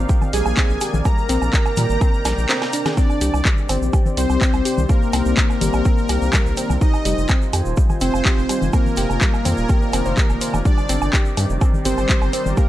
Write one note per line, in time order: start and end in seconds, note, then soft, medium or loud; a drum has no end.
0.00 2.96 C3 medium
0.00 2.96 D#3 medium
0.00 2.94 A#3 medium
0.00 2.93 A#4 medium
0.00 6.77 D5 medium
0.00 1.03 F5 medium
0.09 0.15 G4 medium
0.09 0.15 G5 medium
0.09 kick loud
0.09 shaker medium
0.22 low conga medium
0.22 low woodblock medium
0.22 shaker soft
0.33 0.42 A#1 loud
0.33 0.39 G3 medium
0.33 0.39 G4 medium
0.33 0.96 G#4 loud
0.33 0.96 G#5 loud
0.33 open hi-hat loud
0.33 shaker medium
0.46 0.54 A#1 medium
0.46 low woodblock medium
0.46 shaker soft
0.57 0.63 C4 loud
0.57 0.63 C5 medium
0.57 kick loud
0.57 clap loud
0.57 shaker soft
0.70 0.78 A#1 medium
0.70 shaker soft
0.81 0.87 G4 medium
0.81 0.87 G5 medium
0.81 open hi-hat medium
0.81 low woodblock medium
0.81 shaker medium
0.94 1.02 A#1 medium
0.94 low conga medium
0.94 shaker soft
1.05 1.11 G3 medium
1.05 1.11 G4 medium
1.05 2.88 A#4 loud
1.05 2.95 G5 medium
1.05 2.88 A#5 loud
1.05 kick loud
1.05 low woodblock medium
1.05 shaker medium
1.18 shaker soft
1.29 1.38 A#1 medium
1.29 1.35 C4 loud
1.29 1.35 C5 medium
1.29 open hi-hat loud
1.29 shaker loud
1.42 1.50 A#1 medium
1.42 low woodblock medium
1.42 shaker soft
1.53 1.59 G4 medium
1.53 1.59 G5 medium
1.53 kick loud
1.53 clap loud
1.53 shaker medium
1.66 low woodblock medium
1.66 shaker soft
1.77 1.86 A#2 loud
1.77 1.83 G3 medium
1.77 1.83 G4 medium
1.77 open hi-hat medium
1.77 low conga loud
1.77 shaker medium
1.90 1.98 G#1 medium
1.90 shaker soft
2.01 2.07 C4 loud
2.01 2.07 C5 medium
2.01 kick loud
2.01 low woodblock medium
2.01 shaker medium
2.14 shaker soft
2.25 2.34 A#1 loud
2.25 2.29 G3 loud
2.25 2.29 G4 medium
2.25 snare medium
2.25 open hi-hat loud
2.25 low woodblock medium
2.25 shaker loud
2.38 2.46 A#1 medium
2.38 shaker soft
2.49 2.53 C4 medium
2.49 2.53 C5 medium
2.49 snare medium
2.49 clap loud
2.49 shaker medium
2.62 snare medium
2.62 low woodblock medium
2.62 shaker soft
2.73 2.79 D4 medium
2.73 2.79 D5 medium
2.73 open hi-hat medium
2.73 shaker medium
2.86 2.91 G#4 medium
2.86 2.91 G#5 medium
2.86 snare medium
2.86 low conga medium
2.86 low woodblock medium
2.86 shaker soft
2.97 12.69 C3 medium
2.97 12.69 D#3 medium
2.97 3.03 C4 loud
2.97 6.77 C4 medium
2.97 3.42 D4 loud
2.97 6.77 G4 medium
2.97 3.03 C5 medium
2.97 6.77 C5 medium
2.97 3.42 D5 loud
2.97 kick loud
2.97 shaker medium
3.10 low woodblock medium
3.10 shaker soft
3.21 3.30 C2 medium
3.21 3.27 G4 medium
3.21 3.27 G5 medium
3.21 open hi-hat loud
3.21 shaker loud
3.34 3.42 C2 medium
3.34 low woodblock medium
3.34 shaker soft
3.45 3.51 G3 medium
3.45 3.51 G4 medium
3.45 kick loud
3.45 clap loud
3.45 shaker soft
3.57 shaker soft
3.69 3.78 G1 loud
3.69 3.75 C4 loud
3.69 3.75 C5 medium
3.69 open hi-hat medium
3.69 low woodblock medium
3.69 shaker medium
3.82 3.90 A#1 medium
3.82 shaker soft
3.93 3.99 G4 medium
3.93 3.99 G5 medium
3.93 kick loud
3.93 low woodblock medium
3.93 shaker soft
4.06 low conga medium
4.06 shaker soft
4.17 4.26 C2 loud
4.17 4.23 G3 medium
4.17 4.80 C4 loud
4.17 4.23 G4 medium
4.17 4.80 C5 loud
4.17 open hi-hat loud
4.17 shaker medium
4.30 4.38 C2 medium
4.30 low woodblock medium
4.30 shaker soft
4.41 4.47 C4 loud
4.41 4.47 C5 medium
4.41 kick loud
4.41 clap loud
4.41 shaker medium
4.53 4.62 C2 medium
4.53 low woodblock medium
4.53 shaker soft
4.65 4.71 G4 medium
4.65 4.71 G5 medium
4.65 open hi-hat loud
4.65 shaker medium
4.78 4.86 C2 medium
4.78 low conga medium
4.78 shaker soft
4.89 4.95 G3 medium
4.89 6.72 A#3 loud
4.89 4.95 G4 medium
4.89 6.72 A#4 loud
4.89 kick loud
4.89 low woodblock medium
4.89 shaker medium
5.02 shaker soft
5.13 5.22 C2 medium
5.13 5.19 C4 loud
5.13 5.19 C5 medium
5.13 open hi-hat loud
5.13 low woodblock medium
5.13 shaker loud
5.26 5.34 C2 medium
5.26 shaker soft
5.37 5.43 G4 medium
5.37 5.43 G5 medium
5.37 kick loud
5.37 clap loud
5.37 shaker medium
5.50 low woodblock medium
5.50 shaker soft
5.61 5.70 G1 loud
5.61 5.67 G3 medium
5.61 5.67 G4 medium
5.61 open hi-hat loud
5.61 low conga loud
5.61 shaker loud
5.73 5.82 A#1 medium
5.73 low woodblock medium
5.73 shaker soft
5.85 5.91 C4 loud
5.85 5.91 C5 medium
5.85 kick loud
5.85 shaker medium
5.98 shaker soft
6.09 6.18 C2 medium
6.09 6.15 G4 medium
6.09 6.15 G5 medium
6.09 open hi-hat loud
6.09 low woodblock medium
6.09 shaker medium
6.22 6.30 C2 medium
6.22 shaker soft
6.33 6.39 G3 medium
6.33 6.39 G4 medium
6.33 kick loud
6.33 clap loud
6.33 low woodblock medium
6.33 shaker medium
6.46 6.54 C2 medium
6.46 shaker soft
6.57 6.63 C4 loud
6.57 6.63 C5 medium
6.57 open hi-hat loud
6.57 shaker loud
6.70 6.78 C2 medium
6.70 low conga medium
6.70 low woodblock medium
6.70 shaker soft
6.81 7.26 D#4 loud
6.81 10.61 F4 medium
6.81 6.87 G4 medium
6.81 8.71 C5 medium
6.81 7.26 D#5 loud
6.81 6.87 G5 medium
6.81 10.61 G#5 medium
6.81 kick loud
6.81 shaker medium
6.94 low woodblock medium
6.94 shaker soft
7.05 7.14 F1 medium
7.05 7.11 G3 medium
7.05 7.11 G4 medium
7.05 open hi-hat loud
7.05 shaker loud
7.18 7.26 F1 medium
7.18 shaker soft
7.28 7.35 C4 loud
7.28 7.35 C5 medium
7.28 kick loud
7.28 clap loud
7.28 low woodblock medium
7.28 shaker medium
7.42 shaker soft
7.53 7.62 F2 medium
7.53 7.59 G4 medium
7.53 7.59 G5 medium
7.53 open hi-hat loud
7.53 low woodblock medium
7.53 shaker loud
7.65 7.74 D#1 medium
7.65 shaker soft
7.77 7.83 G3 medium
7.77 7.83 G4 medium
7.77 kick loud
7.77 shaker medium
7.90 low conga medium
7.90 low woodblock soft
7.90 shaker soft
8.01 8.10 F1 medium
8.01 8.07 C4 loud
8.01 8.64 C4 loud
8.01 8.07 C5 medium
8.01 8.64 C5 loud
8.01 open hi-hat loud
8.01 shaker loud
8.14 8.22 F1 medium
8.14 low woodblock medium
8.14 shaker soft
8.25 8.31 G4 medium
8.25 8.31 G5 medium
8.25 kick loud
8.25 clap loud
8.25 shaker medium
8.38 8.46 F1 medium
8.38 shaker soft
8.49 8.55 G3 medium
8.49 8.55 G4 medium
8.49 open hi-hat loud
8.49 low woodblock medium
8.49 shaker loud
8.62 8.70 F1 medium
8.62 low conga medium
8.62 shaker soft
8.73 10.56 A#3 loud
8.73 8.79 C4 loud
8.73 10.56 A#4 loud
8.73 8.79 C5 medium
8.73 12.69 D5 medium
8.73 kick loud
8.73 low woodblock medium
8.73 shaker medium
8.86 low conga medium
8.86 shaker soft
8.97 9.06 F1 medium
8.97 9.03 G4 medium
8.97 9.03 G5 medium
8.97 open hi-hat loud
8.97 shaker medium
9.10 9.18 F1 medium
9.10 low woodblock medium
9.10 shaker soft
9.21 9.27 G3 medium
9.21 9.27 G4 medium
9.21 kick loud
9.21 clap loud
9.21 shaker soft
9.34 low woodblock medium
9.34 shaker soft
9.45 9.54 F2 loud
9.45 9.51 C4 loud
9.45 9.51 C5 medium
9.45 open hi-hat medium
9.45 low conga medium
9.45 shaker loud
9.57 9.66 D#1 medium
9.57 shaker soft
9.69 9.75 G4 medium
9.69 9.75 G5 medium
9.69 kick loud
9.69 low woodblock medium
9.69 shaker medium
9.82 shaker soft
9.93 10.02 F1 loud
9.93 9.97 C4 loud
9.93 9.97 C5 medium
9.93 open hi-hat loud
9.93 low woodblock medium
9.93 shaker loud
10.05 10.14 F1 medium
10.05 10.14 C5 loud
10.05 10.14 C6 medium
10.05 shaker soft
10.17 10.21 G4 medium
10.17 10.21 G5 medium
10.17 kick loud
10.17 clap loud
10.17 shaker medium
10.30 10.38 F1 medium
10.30 low woodblock medium
10.30 shaker soft
10.41 10.47 C5 medium
10.41 10.47 C6 medium
10.41 open hi-hat loud
10.41 shaker loud
10.54 10.62 F1 medium
10.54 low conga medium
10.54 low woodblock medium
10.54 shaker soft
10.65 10.71 G3 medium
10.65 12.69 G3 medium
10.65 11.10 D4 loud
10.65 10.71 G4 medium
10.65 12.69 G4 medium
10.65 12.69 A#4 medium
10.65 11.10 D5 loud
10.65 kick loud
10.65 shaker soft
10.78 low woodblock medium
10.78 shaker soft
10.89 10.98 G1 medium
10.89 10.95 C4 loud
10.89 10.95 C5 medium
10.89 open hi-hat loud
10.89 shaker loud
11.02 11.10 G1 medium
11.02 low woodblock medium
11.02 shaker soft
11.13 11.19 G4 medium
11.13 11.19 G5 medium
11.13 kick loud
11.13 clap loud
11.13 shaker medium
11.25 shaker soft
11.37 11.46 G2 loud
11.37 11.43 G3 medium
11.37 11.43 G4 medium
11.37 open hi-hat medium
11.37 low woodblock medium
11.37 shaker medium
11.50 11.58 F1 medium
11.50 shaker soft
11.61 11.67 C4 loud
11.61 11.67 C5 medium
11.61 kick loud
11.61 low woodblock medium
11.61 shaker medium
11.74 low conga medium
11.74 shaker soft
11.85 11.94 G1 medium
11.85 12.48 C4 loud
11.85 11.91 G4 medium
11.85 12.48 C5 loud
11.85 11.91 G5 medium
11.85 open hi-hat loud
11.85 shaker loud
11.98 12.06 G1 medium
11.98 low woodblock medium
11.98 shaker soft
12.09 12.15 G3 medium
12.09 12.15 G4 medium
12.09 kick loud
12.09 clap loud
12.09 shaker medium
12.22 12.30 G1 medium
12.22 low woodblock medium
12.22 shaker soft
12.33 12.39 C4 loud
12.33 12.39 C5 medium
12.33 open hi-hat loud
12.33 shaker medium
12.46 12.54 G1 medium
12.46 low conga medium
12.46 shaker soft
12.57 12.69 A#3 loud
12.57 12.63 G4 medium
12.57 12.69 A#4 loud
12.57 12.63 G5 medium
12.57 kick loud
12.57 low woodblock medium
12.57 shaker soft